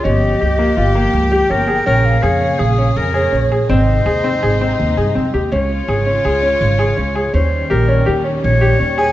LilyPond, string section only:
\new Staff \with { instrumentName = "String section" } { \clef bass \time 5/4 \key des \lydian \tempo 4 = 164 << { <f g'>1~ <f g'>4 | <des aes'>1~ <des aes'>4 | <c ees'>1~ <c ees'>4 | <des f'>1~ <des f'>4 |
<ees g>1~ <ees g>4 | } \\ { bes1~ bes4~ | bes1~ bes4 | aes1~ aes4 | aes1~ aes4 |
des'1~ des'4 | } >> }